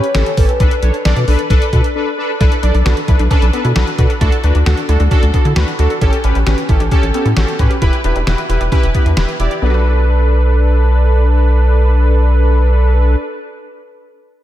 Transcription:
Already playing: C#5
0.04 closed hi-hat
0.15 A1 C#4 G4 A4, snare, closed hi-hat
0.26 closed hi-hat
0.37 A1 C#4 G4 A4 B4, kick, open hi-hat
0.49 closed hi-hat
0.60 B1 D4 A4 B4, kick, closed hi-hat
0.71 closed hi-hat
0.82 B1 D4 A4 C#5, closed hi-hat
0.94 closed hi-hat
1.05 B1 D4 A4 D5, snare, closed hi-hat
1.16 B2, closed hi-hat
1.28 B1 D4 A4 B4, open hi-hat
1.39 closed hi-hat
1.50 B1 D4 A4 B4, kick, closed hi-hat
1.62 closed hi-hat
1.73 B2 D4 A4 B4, kick, closed hi-hat
1.84 closed hi-hat
1.95 D4 A4 B4
2.18 D4 A4 B4
2.40 B1 D4 E4 A4 B4, kick, closed hi-hat
2.52 closed hi-hat
2.63 B1 D4 A4 D5, closed hi-hat
2.74 B1 D4, closed hi-hat
2.86 B1 D4 F#4 A4 B4, snare, closed hi-hat
2.97 closed hi-hat
3.08 B1 D4 E4 A4 B4, kick, closed hi-hat
3.19 B1 D4, closed hi-hat
3.31 C#4 D4 A4 B4, kick, closed hi-hat
3.42 B1, closed hi-hat
3.53 B3 D4 A4 B4, closed hi-hat
3.65 B2 E4, closed hi-hat
3.76 B1 D4 F#4 A4 B4, snare, closed hi-hat
3.87 closed hi-hat
3.98 B2 D4 F#4 A4 B4, kick, closed hi-hat
4.10 A4, closed hi-hat
4.21 D2 D4 E4 F#4 A4, kick, closed hi-hat
4.32 closed hi-hat
4.44 D2 D4 F#4 B4, closed hi-hat
4.55 D2 D4, closed hi-hat
4.66 D2 D4 F#4 A4, snare, closed hi-hat
4.77 closed hi-hat
4.89 D2 D4 E4 F#4 A4, closed hi-hat
5.00 D2 D4, closed hi-hat
5.11 C#4 D4 F#4 A4, kick, closed hi-hat
5.23 D2, closed hi-hat
5.34 B3 D4 F#4 A4, kick, closed hi-hat
5.45 D3 E4, closed hi-hat
5.56 D2 D4 F#4 B4, snare, closed hi-hat
5.68 closed hi-hat
5.79 D2 D4 F#4 A4, closed hi-hat
5.90 A4, closed hi-hat
6.01 A1 C#4 E4 G4 A4, kick, closed hi-hat
6.13 closed hi-hat
6.24 A1 C#4 G4 B4, closed hi-hat
6.35 A1 C#4, closed hi-hat
6.46 A1 C#4 F#4 G4 B4, snare, closed hi-hat
6.58 closed hi-hat
6.69 A1 C#4 E4 G4 A4, kick, closed hi-hat
6.80 A1 D4, closed hi-hat
6.91 C#4 G4 A4, kick, closed hi-hat
7.03 A1, closed hi-hat
7.14 B3 C#4 G4 A4, closed hi-hat
7.25 A2 E4, closed hi-hat
7.36 A1 C#4 F#4 G4 A4, snare, closed hi-hat
7.48 closed hi-hat
7.59 A2 C#4 F#4 G4 B4, kick, closed hi-hat
7.70 G4, closed hi-hat
7.82 E1 E4 G4 B4, kick, closed hi-hat
7.93 closed hi-hat
8.04 E1 D4 E4 G4 B4, closed hi-hat
8.15 E1 D4, closed hi-hat
8.27 E1 E4 F#4 G4 B4, snare, closed hi-hat
8.38 closed hi-hat
8.49 E1 E4 G4 B4, closed hi-hat
8.61 E1 D4, closed hi-hat
8.72 C#4 E4 G4 B4, kick, closed hi-hat
8.83 E1, closed hi-hat
8.95 B3 E4 G4 B4, kick, closed hi-hat
9.06 E2 D4, closed hi-hat
9.17 E1 E4 G4 B4, snare, closed hi-hat
9.29 closed hi-hat
9.39 E1 E4 G4 D5, closed hi-hat
9.51 G4, closed hi-hat
9.62 B1 B3 D4 A4 B4
9.66 D4
9.70 F#4
9.74 B4

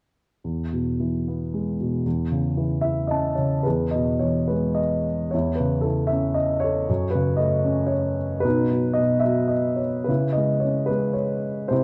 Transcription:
0.44 E2
0.72 B2
1.00 E3
1.28 B3
1.54 G#3
1.81 B2
2.06 E2
2.32 C#3
2.57 E3
2.81 E4 E5
3.07 C#4 D#5 A5
3.35 C#3 C#5
3.63 E2 G#4 B4
3.91 B2 D#5
4.19 E3 C#5
4.48 G#3 B4
4.75 D#5
5.31 E2 E4 C#5
5.55 B4
5.60 C#3
5.81 E3 A4
6.07 E5
6.12 C#4
6.34 D#5
6.60 C#5
6.64 A4
6.89 F#2
7.11 B4
7.15 C#3
7.37 A3 D#5
7.65 C#4
7.87 C#5
8.40 B2 B4
8.45 D#4
8.71 F#3
8.94 D#5
8.98 B2
9.20 E5
9.25 F#3
9.48 D#5
9.76 C#5
10.04 B4
10.08 C#3 E4
10.33 D#5
10.37 G#3
10.60 C#5
10.64 C#4
10.86 B4
10.90 G#3
11.13 C#5
11.68 C3 C5
11.72 E4

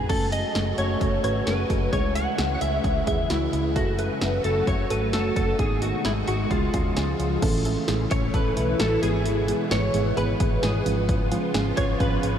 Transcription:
0.09 F#1 C#3 F#3 A3 C#4 F#4 A4, kick, crash
0.32 A3 C#4 F#4 G#4 D#5, closed hi-hat
0.55 F#1 A3 C#4 F#4 A4, snare, closed hi-hat
0.78 F#1 A3 C#4 F#4 A4 C#5, closed hi-hat
1.01 F#1 A3 C#4 F#4 A4, kick, closed hi-hat
1.24 G#1 A3 C#4 F#4 B4 C#5, closed hi-hat
1.47 F#1 A3 C#4 F#4 G#4 B4, snare, closed hi-hat
1.70 F#1 A3 C#4 F#4 A4, kick, closed hi-hat
1.93 C#2 C#3 E3 G#3 C#4 E4 G#4 C#5, kick, closed hi-hat
2.15 G#3 C#4 E4 G#4 F#5, closed hi-hat
2.38 C#2 G#3 C#4 E4 G#4, snare, closed hi-hat
2.54 F#5
2.61 C#2 G#3 C#4 E4 G#4 E5, closed hi-hat
2.84 C#2 G#3 C#4 E4 G#4, kick, closed hi-hat
3.07 D#2 G#3 C#4 E4 G#4 E5, kick, closed hi-hat
3.30 C#2 G#3 C#4 E4 F#4, snare, closed hi-hat
3.53 C#2 G#3 C#4 E4 G#4, closed hi-hat
3.76 F#1 F#3 A3 C#4 F#4 A4, kick, closed hi-hat
3.99 A3 C#4 F#4 A4 B4, closed hi-hat
4.21 F#1 A3 C#4 F#4 A4, snare, closed hi-hat
4.44 F#1 A3 C#4 F#4 A4, closed hi-hat
4.67 F#1 A3 C#4 F#4 B4 C#5, kick, closed hi-hat
4.90 G#1 A3 C#4 F#4 A4 B4, closed hi-hat
5.13 F#1 A3 C#4 F#4 A4, snare, closed hi-hat
5.36 F#1 A3 C#4 F#4 A4, kick, closed hi-hat
5.59 G#1 B2 D#3 G#3 B3 D#4 G#4, kick, closed hi-hat
5.82 G#3 B3 D#4 F#4, closed hi-hat
6.05 G#1 G#3 B3 D#4 E4 G#4, snare, closed hi-hat
6.28 G#1 G#3 B3 D#4 F#4 G#4, closed hi-hat
6.51 C#2 C#3 F3 G#3 C#4 F4 G#4, kick, closed hi-hat
6.74 D#2 G#3 C#4 F4 G#4, kick, closed hi-hat
6.97 C#2 G#3 C#4 F4 G#4, snare, closed hi-hat
7.19 C#2 G#3 C#4 F4 G#4, closed hi-hat
7.42 A1 C#3 E3 A3 C#4 E4 A4, kick, closed hi-hat, crash
7.65 E3 A3 C#4 E4 A4, closed hi-hat
7.88 A1 E3 A3 C#4 E4 G#4, snare, closed hi-hat
8.11 A1 E3 A3 C#4 E4 A4 C#5, kick, closed hi-hat
8.34 A1 E3 A3 C#4 E4 A4 B4, kick, closed hi-hat
8.57 B1 E3 A3 C#4 E4 A4, closed hi-hat
8.80 A1 E3 A3 C#4 E4 F#4 A4, snare, closed hi-hat
9.03 G#1 B2 E3 G#3 B3 E4 G#4, closed hi-hat
9.26 closed hi-hat
9.48 E3 G#3 B3 E4 G#4, closed hi-hat
9.71 G#1 E3 G#3 B3 E4 G#4 C#5, snare, closed hi-hat
9.94 G#1 E3 G#3 B3 E4 G#4, closed hi-hat
10.17 G#1 E3 G#3 B3 E4 G#4 B4, closed hi-hat
10.40 G#1 E3 G#3 B3 E4 G#4, kick, closed hi-hat
10.63 G#1 E3 G#3 B3 E4 G#4, snare, closed hi-hat
10.86 G#1 C#3 F3 G#3 C#4 F4 G#4, closed hi-hat
11.09 kick, closed hi-hat
11.32 F3 G#3 C#4 F4 G#4, closed hi-hat
11.54 G#1 F3 G#3 C#4 F4 G#4, snare, closed hi-hat
11.77 G#1 F3 G#3 C#4 F4 G#4 C#5, kick, closed hi-hat
12.00 G#1 F3 G#3 C#4 F4 G#4 B4, kick, closed hi-hat
12.23 G#1 F3 G#3 C#4 F4 G#4, closed hi-hat

